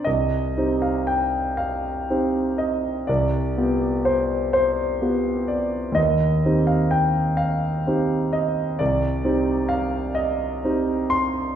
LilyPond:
\new Staff \with { instrumentName = "Grand piano" } { \time 12/8 \key c \minor \tempo 4. = 42 << { ees''8. f''16 g''8 f''4 ees''8 d''4 c''8 c''4 d''8 | ees''8. f''16 g''8 f''4 ees''8 d''4 f''8 ees''4 c'''8 | } \\ { c,8 <c' ees' g'>4. <c' ees' g'>4 c,8 <b f' g'>4. <b f' g'>4 | ees,8 <c' ees' g'>4. <c' ees' g'>4 c,8 <c' ees' g'>4. <c' ees' g'>4 | } >> }